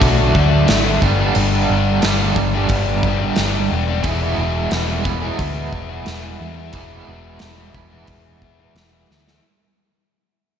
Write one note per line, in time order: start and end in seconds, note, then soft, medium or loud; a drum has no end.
0.00 0.31 B1 medium
0.00 1.01 D3 medium
0.00 1.01 F#3 medium
0.00 0.34 A3 soft
0.00 1.01 A3 medium
0.00 0.35 D4 medium
0.00 1.00 D4 medium
0.00 0.35 F#4 medium
0.00 kick loud
0.00 open hi-hat soft
0.34 0.65 D2 medium
0.34 0.65 D3 medium
0.34 0.52 A3 medium
0.34 0.51 D4 medium
0.34 0.49 F#4 medium
0.34 kick medium
0.50 0.66 A3 soft
0.50 0.68 D4 medium
0.50 0.68 F#4 medium
0.66 0.98 G#1 medium
0.66 0.99 D3 medium
0.66 0.86 A3 medium
0.66 0.85 D4 medium
0.66 0.83 F#4 medium
0.66 snare medium
0.66 open hi-hat soft
0.84 1.01 A3 soft
0.84 1.00 D4 soft
0.84 0.99 F#4 medium
1.02 1.32 G1 medium
1.02 1.34 G2 medium
1.02 1.35 D3 medium
1.02 1.21 G3 medium
1.02 1.21 B3 medium
1.02 1.20 D4 medium
1.02 1.18 G4 medium
1.02 kick medium
1.19 1.35 G3 medium
1.19 1.36 B3 medium
1.19 1.37 D4 medium
1.19 1.38 G4 medium
1.35 1.65 G1 medium
1.35 2.02 G2 medium
1.35 2.02 D3 medium
1.35 1.68 G3 medium
1.35 1.70 B3 medium
1.35 1.70 D4 medium
1.35 1.70 G4 medium
1.35 open hi-hat soft
1.70 1.99 G1 medium
1.70 2.02 G3 medium
1.70 2.04 B3 medium
1.70 2.04 D4 medium
1.70 2.05 G4 medium
2.02 2.33 G1 medium
2.02 2.53 G2 medium
2.02 2.53 D3 medium
2.02 2.22 G3 medium
2.02 2.21 B3 medium
2.02 2.20 D4 medium
2.02 2.19 G4 medium
2.02 snare medium
2.02 open hi-hat soft
2.20 2.36 G3 medium
2.20 2.38 B3 medium
2.20 2.37 D4 medium
2.20 2.38 G4 medium
2.36 2.67 G1 medium
2.36 muted overdriven electric guitar stroke soft
2.36 kick medium
2.53 3.04 G3 medium
2.53 3.06 B3 medium
2.53 3.06 D4 medium
2.53 3.07 G4 medium
2.69 3.29 G1 medium
2.69 kick loud
2.69 open hi-hat soft
3.03 3.23 G3 medium
3.03 3.23 B3 medium
3.03 3.21 D4 medium
3.03 kick medium
3.08 3.20 G4 medium
3.21 3.37 G3 soft
3.21 3.39 B3 medium
3.21 3.38 D4 medium
3.21 3.39 G4 medium
3.36 3.67 G1 medium
3.36 3.87 G2 medium
3.36 3.88 D3 medium
3.36 3.54 G3 medium
3.36 3.54 B3 medium
3.36 3.53 D4 medium
3.36 snare medium
3.36 open hi-hat soft
3.40 3.52 G4 medium
3.53 3.69 G3 soft
3.53 3.71 B3 soft
3.53 3.71 D4 medium
3.53 3.72 G4 medium
3.70 4.01 E1 medium
3.70 3.89 G3 medium
3.70 3.90 B3 medium
3.70 3.87 D4 medium
3.70 3.86 G4 medium
3.87 4.04 G3 soft
3.87 4.04 B3 medium
3.87 4.03 D4 medium
3.87 4.02 G4 medium
4.03 4.34 E1 medium
4.03 4.70 E2 medium
4.03 4.70 B2 medium
4.03 4.37 E3 medium
4.03 5.06 G#3 medium
4.03 4.38 B3 medium
4.03 4.39 E4 medium
4.03 4.40 G#4 medium
4.03 kick medium
4.03 open hi-hat soft
4.37 4.68 E1 medium
4.37 4.72 E3 medium
4.37 4.72 B3 medium
4.37 4.73 E4 medium
4.37 4.73 G#4 medium
4.70 5.31 E1 medium
4.70 6.07 E2 medium
4.70 5.22 B2 medium
4.70 4.91 E3 medium
4.70 4.89 B3 medium
4.70 4.89 E4 medium
4.70 4.88 G#4 medium
4.70 snare medium
4.70 open hi-hat soft
4.88 5.06 E3 medium
4.88 5.05 B3 medium
4.88 5.06 E4 medium
4.88 5.06 G#4 medium
5.04 6.74 G#3 medium
5.04 6.75 B3 medium
5.04 6.76 E4 medium
5.04 muted overdriven electric guitar stroke soft
5.04 kick medium
5.08 6.72 E3 medium
5.22 5.71 E3 medium
5.22 5.72 B3 medium
5.22 5.74 E4 medium
5.22 5.74 G#4 medium
5.39 5.69 D2 medium
5.39 kick medium
5.39 open hi-hat soft
5.72 6.02 E1 medium
5.72 5.91 E3 medium
5.72 5.91 B3 medium
5.72 5.90 E4 medium
5.72 5.89 G#4 medium
5.72 kick medium
5.89 6.07 E3 soft
5.89 6.08 B3 medium
5.89 6.09 E4 medium
5.89 6.09 G#4 medium
6.06 6.36 E1 medium
6.06 6.72 E2 medium
6.06 6.57 B2 medium
6.06 6.25 E3 medium
6.06 6.24 B3 medium
6.06 6.24 E4 medium
6.06 6.22 G#4 medium
6.06 snare medium
6.06 open hi-hat soft
6.23 6.40 E3 soft
6.23 6.42 B3 medium
6.23 6.42 E4 medium
6.23 6.43 G#4 medium
6.40 6.70 E2 medium
6.40 6.58 E3 medium
6.40 6.57 B3 medium
6.40 6.57 E4 medium
6.40 6.55 G#4 medium
6.56 6.74 E3 medium
6.56 6.74 B3 soft
6.56 6.74 E4 medium
6.56 6.75 G#4 medium
6.73 7.03 E1 medium
6.73 7.39 E2 medium
6.73 7.39 B2 medium
6.73 7.06 E3 medium
6.73 7.73 G#3 medium
6.73 7.07 B3 medium
6.73 7.08 E4 medium
6.73 7.09 G#4 medium
6.73 kick medium
6.73 open hi-hat soft
7.07 7.38 E1 medium
7.07 7.40 E3 medium
7.07 7.41 B3 medium
7.07 7.41 E4 medium
7.07 7.41 G#4 medium
7.39 7.71 E1 medium
7.39 7.91 E2 medium
7.39 7.91 B2 medium
7.39 7.59 E3 medium
7.39 7.58 B3 medium
7.39 7.57 E4 medium
7.39 7.56 G#4 medium
7.39 snare medium
7.39 open hi-hat soft
7.57 7.72 E3 soft
7.57 7.73 B3 soft
7.57 7.73 E4 medium
7.57 7.74 G#4 medium
7.74 8.04 E1 medium
7.74 9.42 G#3 medium
7.74 9.41 B3 medium
7.74 9.40 E4 medium
7.74 muted overdriven electric guitar stroke soft
7.74 kick medium
7.78 9.42 E3 medium
7.90 8.40 E3 soft
7.90 8.41 B3 medium
7.90 8.42 E4 medium
7.90 8.43 G#4 medium
8.07 8.67 E1 medium
8.07 kick medium
8.07 open hi-hat soft
8.41 8.60 E3 medium
8.41 8.60 B3 medium
8.41 8.58 E4 medium
8.41 8.57 G#4 medium
8.41 kick medium
8.58 8.75 E3 soft
8.58 8.76 B3 soft
8.58 8.77 E4 medium
8.58 8.77 G#4 soft
8.75 9.05 E1 medium
8.75 9.25 E2 medium
8.75 9.26 B2 medium
8.75 8.93 E3 medium
8.75 8.92 B3 medium
8.75 8.91 E4 medium
8.75 8.90 G#4 medium
8.75 snare medium
8.75 open hi-hat soft
8.91 9.08 E3 soft
8.91 9.09 B3 medium
8.91 9.10 E4 soft
8.91 9.11 G#4 medium
9.09 9.39 D2 medium
9.09 9.28 E3 medium
9.09 9.27 B3 medium
9.09 9.26 E4 medium
9.09 9.25 G#4 medium
9.09 snare soft
9.26 9.42 E3 soft
9.26 9.42 B3 soft
9.26 9.41 E4 soft
9.26 9.41 G#4 medium
9.26 snare medium